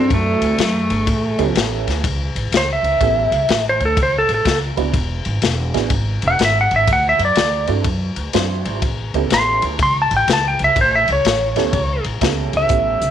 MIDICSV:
0, 0, Header, 1, 5, 480
1, 0, Start_track
1, 0, Tempo, 484653
1, 1061, Time_signature, 4, 2, 24, 8
1, 12980, End_track
2, 0, Start_track
2, 0, Title_t, "Electric slide guitar"
2, 0, Program_c, 0, 29
2, 0, Note_on_c, 0, 60, 80
2, 125, Note_off_c, 0, 60, 0
2, 138, Note_on_c, 0, 57, 96
2, 1517, Note_off_c, 0, 57, 0
2, 2546, Note_on_c, 0, 72, 107
2, 2677, Note_off_c, 0, 72, 0
2, 2700, Note_on_c, 0, 76, 100
2, 3609, Note_off_c, 0, 76, 0
2, 3659, Note_on_c, 0, 72, 92
2, 3793, Note_off_c, 0, 72, 0
2, 3817, Note_on_c, 0, 69, 92
2, 3952, Note_off_c, 0, 69, 0
2, 3988, Note_on_c, 0, 72, 94
2, 4117, Note_off_c, 0, 72, 0
2, 4144, Note_on_c, 0, 69, 97
2, 4275, Note_off_c, 0, 69, 0
2, 4302, Note_on_c, 0, 69, 106
2, 4535, Note_off_c, 0, 69, 0
2, 6216, Note_on_c, 0, 78, 102
2, 6350, Note_off_c, 0, 78, 0
2, 6385, Note_on_c, 0, 76, 86
2, 6515, Note_off_c, 0, 76, 0
2, 6545, Note_on_c, 0, 78, 87
2, 6675, Note_off_c, 0, 78, 0
2, 6695, Note_on_c, 0, 76, 103
2, 6830, Note_off_c, 0, 76, 0
2, 6860, Note_on_c, 0, 78, 102
2, 6992, Note_off_c, 0, 78, 0
2, 7022, Note_on_c, 0, 76, 95
2, 7153, Note_off_c, 0, 76, 0
2, 7179, Note_on_c, 0, 74, 102
2, 7622, Note_off_c, 0, 74, 0
2, 9249, Note_on_c, 0, 84, 112
2, 9543, Note_off_c, 0, 84, 0
2, 9732, Note_on_c, 0, 84, 98
2, 9869, Note_off_c, 0, 84, 0
2, 9921, Note_on_c, 0, 81, 90
2, 10044, Note_off_c, 0, 81, 0
2, 10068, Note_on_c, 0, 79, 102
2, 10198, Note_off_c, 0, 79, 0
2, 10233, Note_on_c, 0, 81, 92
2, 10360, Note_off_c, 0, 81, 0
2, 10379, Note_on_c, 0, 79, 90
2, 10513, Note_off_c, 0, 79, 0
2, 10541, Note_on_c, 0, 76, 101
2, 10675, Note_off_c, 0, 76, 0
2, 10707, Note_on_c, 0, 72, 102
2, 10838, Note_off_c, 0, 72, 0
2, 10849, Note_on_c, 0, 76, 96
2, 10989, Note_off_c, 0, 76, 0
2, 11018, Note_on_c, 0, 73, 110
2, 11932, Note_off_c, 0, 73, 0
2, 12449, Note_on_c, 0, 76, 120
2, 12980, Note_off_c, 0, 76, 0
2, 12980, End_track
3, 0, Start_track
3, 0, Title_t, "Honky-tonk piano"
3, 0, Program_c, 1, 3
3, 0, Note_on_c, 1, 60, 74
3, 0, Note_on_c, 1, 62, 69
3, 0, Note_on_c, 1, 64, 67
3, 0, Note_on_c, 1, 66, 70
3, 0, Note_on_c, 1, 69, 78
3, 549, Note_off_c, 1, 60, 0
3, 551, Note_off_c, 1, 64, 0
3, 553, Note_off_c, 1, 62, 0
3, 553, Note_off_c, 1, 66, 0
3, 556, Note_off_c, 1, 69, 0
3, 1372, Note_on_c, 1, 59, 72
3, 1373, Note_on_c, 1, 64, 68
3, 1374, Note_on_c, 1, 61, 68
3, 1376, Note_on_c, 1, 67, 66
3, 1377, Note_on_c, 1, 69, 82
3, 1985, Note_off_c, 1, 59, 0
3, 1985, Note_off_c, 1, 64, 0
3, 1986, Note_off_c, 1, 61, 0
3, 1987, Note_off_c, 1, 67, 0
3, 1987, Note_off_c, 1, 69, 0
3, 2971, Note_on_c, 1, 59, 64
3, 2974, Note_on_c, 1, 64, 58
3, 2978, Note_on_c, 1, 61, 61
3, 2980, Note_on_c, 1, 67, 62
3, 2980, Note_on_c, 1, 69, 71
3, 3254, Note_off_c, 1, 59, 0
3, 3256, Note_off_c, 1, 64, 0
3, 3258, Note_off_c, 1, 61, 0
3, 3259, Note_off_c, 1, 67, 0
3, 3259, Note_off_c, 1, 69, 0
3, 4724, Note_on_c, 1, 71, 83
3, 4725, Note_on_c, 1, 59, 79
3, 4725, Note_on_c, 1, 62, 73
3, 4725, Note_on_c, 1, 66, 71
3, 4728, Note_on_c, 1, 64, 69
3, 4876, Note_off_c, 1, 66, 0
3, 4876, Note_off_c, 1, 71, 0
3, 4877, Note_off_c, 1, 59, 0
3, 4877, Note_off_c, 1, 62, 0
3, 4878, Note_off_c, 1, 64, 0
3, 5682, Note_on_c, 1, 62, 71
3, 5683, Note_on_c, 1, 59, 75
3, 5685, Note_on_c, 1, 68, 84
3, 5686, Note_on_c, 1, 64, 68
3, 5686, Note_on_c, 1, 66, 70
3, 5834, Note_off_c, 1, 62, 0
3, 5835, Note_off_c, 1, 59, 0
3, 5836, Note_off_c, 1, 64, 0
3, 5836, Note_off_c, 1, 68, 0
3, 5837, Note_off_c, 1, 66, 0
3, 7604, Note_on_c, 1, 60, 70
3, 7607, Note_on_c, 1, 64, 67
3, 7609, Note_on_c, 1, 66, 65
3, 7610, Note_on_c, 1, 62, 70
3, 7612, Note_on_c, 1, 69, 78
3, 7755, Note_off_c, 1, 60, 0
3, 7757, Note_off_c, 1, 64, 0
3, 7758, Note_off_c, 1, 62, 0
3, 7758, Note_off_c, 1, 66, 0
3, 7760, Note_off_c, 1, 69, 0
3, 8254, Note_on_c, 1, 62, 59
3, 8258, Note_on_c, 1, 60, 67
3, 8261, Note_on_c, 1, 66, 60
3, 8263, Note_on_c, 1, 64, 65
3, 8265, Note_on_c, 1, 72, 75
3, 8734, Note_off_c, 1, 62, 0
3, 8736, Note_off_c, 1, 60, 0
3, 8738, Note_off_c, 1, 64, 0
3, 8738, Note_off_c, 1, 66, 0
3, 8739, Note_off_c, 1, 72, 0
3, 9058, Note_on_c, 1, 61, 64
3, 9061, Note_on_c, 1, 67, 69
3, 9062, Note_on_c, 1, 59, 73
3, 9063, Note_on_c, 1, 64, 65
3, 9063, Note_on_c, 1, 69, 76
3, 9667, Note_off_c, 1, 61, 0
3, 9668, Note_off_c, 1, 67, 0
3, 9669, Note_off_c, 1, 59, 0
3, 9669, Note_off_c, 1, 64, 0
3, 9669, Note_off_c, 1, 69, 0
3, 11453, Note_on_c, 1, 59, 87
3, 11454, Note_on_c, 1, 61, 83
3, 11454, Note_on_c, 1, 64, 75
3, 11458, Note_on_c, 1, 69, 95
3, 11462, Note_on_c, 1, 67, 82
3, 11603, Note_off_c, 1, 59, 0
3, 11603, Note_off_c, 1, 64, 0
3, 11604, Note_off_c, 1, 61, 0
3, 11605, Note_off_c, 1, 69, 0
3, 11607, Note_off_c, 1, 67, 0
3, 12099, Note_on_c, 1, 59, 71
3, 12100, Note_on_c, 1, 64, 67
3, 12104, Note_on_c, 1, 61, 68
3, 12104, Note_on_c, 1, 67, 65
3, 12111, Note_on_c, 1, 69, 78
3, 12563, Note_off_c, 1, 64, 0
3, 12564, Note_off_c, 1, 59, 0
3, 12565, Note_off_c, 1, 61, 0
3, 12568, Note_off_c, 1, 67, 0
3, 12572, Note_off_c, 1, 69, 0
3, 12577, Note_on_c, 1, 64, 55
3, 12579, Note_on_c, 1, 59, 57
3, 12580, Note_on_c, 1, 61, 51
3, 12583, Note_on_c, 1, 67, 54
3, 12587, Note_on_c, 1, 69, 61
3, 12862, Note_off_c, 1, 64, 0
3, 12863, Note_off_c, 1, 59, 0
3, 12864, Note_off_c, 1, 61, 0
3, 12865, Note_off_c, 1, 67, 0
3, 12867, Note_off_c, 1, 69, 0
3, 12980, End_track
4, 0, Start_track
4, 0, Title_t, "Upright bass"
4, 0, Program_c, 2, 32
4, 101, Note_on_c, 2, 42, 90
4, 377, Note_off_c, 2, 42, 0
4, 406, Note_on_c, 2, 38, 85
4, 557, Note_off_c, 2, 38, 0
4, 578, Note_on_c, 2, 42, 90
4, 855, Note_off_c, 2, 42, 0
4, 897, Note_on_c, 2, 31, 89
4, 1043, Note_off_c, 2, 31, 0
4, 1059, Note_on_c, 2, 33, 86
4, 1335, Note_off_c, 2, 33, 0
4, 1375, Note_on_c, 2, 37, 90
4, 1521, Note_off_c, 2, 37, 0
4, 1539, Note_on_c, 2, 33, 89
4, 1814, Note_off_c, 2, 33, 0
4, 1854, Note_on_c, 2, 38, 86
4, 2000, Note_off_c, 2, 38, 0
4, 2020, Note_on_c, 2, 37, 89
4, 2294, Note_off_c, 2, 37, 0
4, 2330, Note_on_c, 2, 33, 81
4, 2477, Note_off_c, 2, 33, 0
4, 2492, Note_on_c, 2, 37, 85
4, 2770, Note_off_c, 2, 37, 0
4, 2802, Note_on_c, 2, 37, 89
4, 2953, Note_off_c, 2, 37, 0
4, 2975, Note_on_c, 2, 33, 95
4, 3251, Note_off_c, 2, 33, 0
4, 3282, Note_on_c, 2, 37, 85
4, 3432, Note_off_c, 2, 37, 0
4, 3460, Note_on_c, 2, 33, 88
4, 3733, Note_off_c, 2, 33, 0
4, 3766, Note_on_c, 2, 38, 90
4, 3914, Note_off_c, 2, 38, 0
4, 3931, Note_on_c, 2, 37, 89
4, 4208, Note_off_c, 2, 37, 0
4, 4247, Note_on_c, 2, 33, 83
4, 4395, Note_off_c, 2, 33, 0
4, 4410, Note_on_c, 2, 37, 85
4, 4687, Note_off_c, 2, 37, 0
4, 4725, Note_on_c, 2, 37, 89
4, 4873, Note_off_c, 2, 37, 0
4, 4888, Note_on_c, 2, 28, 91
4, 5166, Note_off_c, 2, 28, 0
4, 5208, Note_on_c, 2, 32, 87
4, 5355, Note_off_c, 2, 32, 0
4, 5370, Note_on_c, 2, 28, 90
4, 5647, Note_off_c, 2, 28, 0
4, 5686, Note_on_c, 2, 33, 86
4, 5833, Note_off_c, 2, 33, 0
4, 5844, Note_on_c, 2, 32, 86
4, 6123, Note_off_c, 2, 32, 0
4, 6170, Note_on_c, 2, 28, 90
4, 6316, Note_off_c, 2, 28, 0
4, 6336, Note_on_c, 2, 32, 91
4, 6610, Note_off_c, 2, 32, 0
4, 6646, Note_on_c, 2, 32, 91
4, 6794, Note_off_c, 2, 32, 0
4, 6808, Note_on_c, 2, 38, 90
4, 7086, Note_off_c, 2, 38, 0
4, 7121, Note_on_c, 2, 42, 91
4, 7270, Note_off_c, 2, 42, 0
4, 7295, Note_on_c, 2, 38, 90
4, 7570, Note_off_c, 2, 38, 0
4, 7609, Note_on_c, 2, 43, 92
4, 7755, Note_off_c, 2, 43, 0
4, 7772, Note_on_c, 2, 42, 94
4, 8048, Note_off_c, 2, 42, 0
4, 8083, Note_on_c, 2, 38, 85
4, 8232, Note_off_c, 2, 38, 0
4, 8258, Note_on_c, 2, 42, 93
4, 8532, Note_off_c, 2, 42, 0
4, 8575, Note_on_c, 2, 32, 86
4, 8719, Note_off_c, 2, 32, 0
4, 8734, Note_on_c, 2, 33, 89
4, 9010, Note_off_c, 2, 33, 0
4, 9052, Note_on_c, 2, 37, 94
4, 9197, Note_off_c, 2, 37, 0
4, 9216, Note_on_c, 2, 33, 90
4, 9491, Note_off_c, 2, 33, 0
4, 9533, Note_on_c, 2, 38, 90
4, 9678, Note_off_c, 2, 38, 0
4, 9693, Note_on_c, 2, 37, 93
4, 9970, Note_off_c, 2, 37, 0
4, 10014, Note_on_c, 2, 33, 89
4, 10159, Note_off_c, 2, 33, 0
4, 10177, Note_on_c, 2, 37, 96
4, 10452, Note_off_c, 2, 37, 0
4, 10499, Note_on_c, 2, 37, 86
4, 10642, Note_off_c, 2, 37, 0
4, 10655, Note_on_c, 2, 33, 96
4, 10932, Note_off_c, 2, 33, 0
4, 10980, Note_on_c, 2, 37, 87
4, 11123, Note_off_c, 2, 37, 0
4, 11143, Note_on_c, 2, 33, 96
4, 11417, Note_off_c, 2, 33, 0
4, 11451, Note_on_c, 2, 38, 86
4, 11599, Note_off_c, 2, 38, 0
4, 11617, Note_on_c, 2, 37, 89
4, 11894, Note_off_c, 2, 37, 0
4, 11932, Note_on_c, 2, 33, 83
4, 12080, Note_off_c, 2, 33, 0
4, 12094, Note_on_c, 2, 37, 95
4, 12373, Note_off_c, 2, 37, 0
4, 12413, Note_on_c, 2, 37, 91
4, 12562, Note_off_c, 2, 37, 0
4, 12574, Note_on_c, 2, 33, 91
4, 12854, Note_off_c, 2, 33, 0
4, 12889, Note_on_c, 2, 37, 78
4, 12980, Note_off_c, 2, 37, 0
4, 12980, End_track
5, 0, Start_track
5, 0, Title_t, "Drums"
5, 103, Note_on_c, 9, 36, 103
5, 104, Note_on_c, 9, 51, 79
5, 202, Note_off_c, 9, 36, 0
5, 203, Note_off_c, 9, 51, 0
5, 412, Note_on_c, 9, 51, 67
5, 511, Note_off_c, 9, 51, 0
5, 579, Note_on_c, 9, 51, 92
5, 597, Note_on_c, 9, 38, 114
5, 678, Note_off_c, 9, 51, 0
5, 696, Note_off_c, 9, 38, 0
5, 891, Note_on_c, 9, 51, 64
5, 990, Note_off_c, 9, 51, 0
5, 1061, Note_on_c, 9, 36, 100
5, 1062, Note_on_c, 9, 51, 83
5, 1160, Note_off_c, 9, 36, 0
5, 1161, Note_off_c, 9, 51, 0
5, 1373, Note_on_c, 9, 51, 60
5, 1473, Note_off_c, 9, 51, 0
5, 1540, Note_on_c, 9, 51, 89
5, 1558, Note_on_c, 9, 38, 113
5, 1639, Note_off_c, 9, 51, 0
5, 1657, Note_off_c, 9, 38, 0
5, 1857, Note_on_c, 9, 51, 66
5, 1875, Note_on_c, 9, 38, 32
5, 1956, Note_off_c, 9, 51, 0
5, 1974, Note_off_c, 9, 38, 0
5, 2021, Note_on_c, 9, 36, 108
5, 2025, Note_on_c, 9, 51, 85
5, 2120, Note_off_c, 9, 36, 0
5, 2124, Note_off_c, 9, 51, 0
5, 2337, Note_on_c, 9, 51, 65
5, 2436, Note_off_c, 9, 51, 0
5, 2499, Note_on_c, 9, 51, 88
5, 2517, Note_on_c, 9, 38, 116
5, 2598, Note_off_c, 9, 51, 0
5, 2616, Note_off_c, 9, 38, 0
5, 2815, Note_on_c, 9, 51, 60
5, 2914, Note_off_c, 9, 51, 0
5, 2978, Note_on_c, 9, 36, 105
5, 2981, Note_on_c, 9, 51, 75
5, 3077, Note_off_c, 9, 36, 0
5, 3080, Note_off_c, 9, 51, 0
5, 3289, Note_on_c, 9, 51, 58
5, 3388, Note_off_c, 9, 51, 0
5, 3453, Note_on_c, 9, 51, 82
5, 3471, Note_on_c, 9, 38, 119
5, 3552, Note_off_c, 9, 51, 0
5, 3570, Note_off_c, 9, 38, 0
5, 3767, Note_on_c, 9, 51, 58
5, 3866, Note_off_c, 9, 51, 0
5, 3932, Note_on_c, 9, 36, 106
5, 3933, Note_on_c, 9, 51, 82
5, 4031, Note_off_c, 9, 36, 0
5, 4032, Note_off_c, 9, 51, 0
5, 4246, Note_on_c, 9, 51, 62
5, 4345, Note_off_c, 9, 51, 0
5, 4411, Note_on_c, 9, 36, 85
5, 4411, Note_on_c, 9, 51, 86
5, 4429, Note_on_c, 9, 38, 112
5, 4510, Note_off_c, 9, 36, 0
5, 4510, Note_off_c, 9, 51, 0
5, 4528, Note_off_c, 9, 38, 0
5, 4727, Note_on_c, 9, 51, 63
5, 4826, Note_off_c, 9, 51, 0
5, 4889, Note_on_c, 9, 36, 102
5, 4890, Note_on_c, 9, 51, 79
5, 4988, Note_off_c, 9, 36, 0
5, 4989, Note_off_c, 9, 51, 0
5, 5199, Note_on_c, 9, 51, 59
5, 5298, Note_off_c, 9, 51, 0
5, 5365, Note_on_c, 9, 51, 88
5, 5383, Note_on_c, 9, 38, 105
5, 5464, Note_off_c, 9, 51, 0
5, 5482, Note_off_c, 9, 38, 0
5, 5687, Note_on_c, 9, 51, 65
5, 5705, Note_on_c, 9, 38, 31
5, 5786, Note_off_c, 9, 51, 0
5, 5804, Note_off_c, 9, 38, 0
5, 5842, Note_on_c, 9, 51, 87
5, 5846, Note_on_c, 9, 36, 101
5, 5941, Note_off_c, 9, 51, 0
5, 5945, Note_off_c, 9, 36, 0
5, 6160, Note_on_c, 9, 51, 69
5, 6259, Note_off_c, 9, 51, 0
5, 6329, Note_on_c, 9, 51, 89
5, 6347, Note_on_c, 9, 38, 114
5, 6428, Note_off_c, 9, 51, 0
5, 6446, Note_off_c, 9, 38, 0
5, 6644, Note_on_c, 9, 51, 62
5, 6743, Note_off_c, 9, 51, 0
5, 6810, Note_on_c, 9, 36, 101
5, 6812, Note_on_c, 9, 51, 80
5, 6909, Note_off_c, 9, 36, 0
5, 6911, Note_off_c, 9, 51, 0
5, 7124, Note_on_c, 9, 51, 59
5, 7223, Note_off_c, 9, 51, 0
5, 7284, Note_on_c, 9, 51, 80
5, 7302, Note_on_c, 9, 38, 109
5, 7383, Note_off_c, 9, 51, 0
5, 7401, Note_off_c, 9, 38, 0
5, 7600, Note_on_c, 9, 51, 61
5, 7699, Note_off_c, 9, 51, 0
5, 7767, Note_on_c, 9, 51, 73
5, 7770, Note_on_c, 9, 36, 110
5, 7866, Note_off_c, 9, 51, 0
5, 7869, Note_off_c, 9, 36, 0
5, 8083, Note_on_c, 9, 51, 58
5, 8182, Note_off_c, 9, 51, 0
5, 8253, Note_on_c, 9, 51, 85
5, 8270, Note_on_c, 9, 38, 118
5, 8352, Note_off_c, 9, 51, 0
5, 8369, Note_off_c, 9, 38, 0
5, 8571, Note_on_c, 9, 51, 63
5, 8670, Note_off_c, 9, 51, 0
5, 8736, Note_on_c, 9, 36, 103
5, 8736, Note_on_c, 9, 51, 82
5, 8835, Note_off_c, 9, 36, 0
5, 8835, Note_off_c, 9, 51, 0
5, 9053, Note_on_c, 9, 51, 58
5, 9152, Note_off_c, 9, 51, 0
5, 9214, Note_on_c, 9, 51, 90
5, 9232, Note_on_c, 9, 38, 110
5, 9313, Note_off_c, 9, 51, 0
5, 9331, Note_off_c, 9, 38, 0
5, 9529, Note_on_c, 9, 51, 68
5, 9628, Note_off_c, 9, 51, 0
5, 9696, Note_on_c, 9, 36, 113
5, 9698, Note_on_c, 9, 51, 84
5, 9795, Note_off_c, 9, 36, 0
5, 9797, Note_off_c, 9, 51, 0
5, 10012, Note_on_c, 9, 51, 67
5, 10111, Note_off_c, 9, 51, 0
5, 10179, Note_on_c, 9, 51, 93
5, 10196, Note_on_c, 9, 38, 114
5, 10278, Note_off_c, 9, 51, 0
5, 10295, Note_off_c, 9, 38, 0
5, 10489, Note_on_c, 9, 51, 65
5, 10588, Note_off_c, 9, 51, 0
5, 10658, Note_on_c, 9, 36, 109
5, 10661, Note_on_c, 9, 51, 80
5, 10757, Note_off_c, 9, 36, 0
5, 10760, Note_off_c, 9, 51, 0
5, 10970, Note_on_c, 9, 51, 65
5, 11069, Note_off_c, 9, 51, 0
5, 11139, Note_on_c, 9, 51, 87
5, 11157, Note_on_c, 9, 38, 114
5, 11238, Note_off_c, 9, 51, 0
5, 11256, Note_off_c, 9, 38, 0
5, 11448, Note_on_c, 9, 51, 63
5, 11465, Note_on_c, 9, 38, 31
5, 11547, Note_off_c, 9, 51, 0
5, 11564, Note_off_c, 9, 38, 0
5, 11618, Note_on_c, 9, 36, 110
5, 11618, Note_on_c, 9, 51, 79
5, 11717, Note_off_c, 9, 36, 0
5, 11717, Note_off_c, 9, 51, 0
5, 11928, Note_on_c, 9, 51, 64
5, 12027, Note_off_c, 9, 51, 0
5, 12096, Note_on_c, 9, 36, 79
5, 12097, Note_on_c, 9, 51, 83
5, 12115, Note_on_c, 9, 38, 118
5, 12195, Note_off_c, 9, 36, 0
5, 12196, Note_off_c, 9, 51, 0
5, 12214, Note_off_c, 9, 38, 0
5, 12411, Note_on_c, 9, 51, 62
5, 12510, Note_off_c, 9, 51, 0
5, 12569, Note_on_c, 9, 42, 76
5, 12577, Note_on_c, 9, 36, 105
5, 12668, Note_off_c, 9, 42, 0
5, 12676, Note_off_c, 9, 36, 0
5, 12891, Note_on_c, 9, 42, 60
5, 12980, Note_off_c, 9, 42, 0
5, 12980, End_track
0, 0, End_of_file